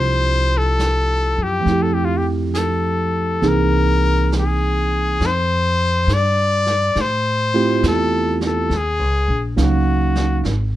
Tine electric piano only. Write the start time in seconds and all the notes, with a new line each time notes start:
Already playing: F3 C4 D4 E4 F4 G4
1.61 F3 A3
1.65 C4 E4
1.72 G4
3.42 E3 A#3 C4 D#4 G#4
7.54 A3 C4 E4 F4 G4
9.56 F#3 A#3 C#4 D#4 F5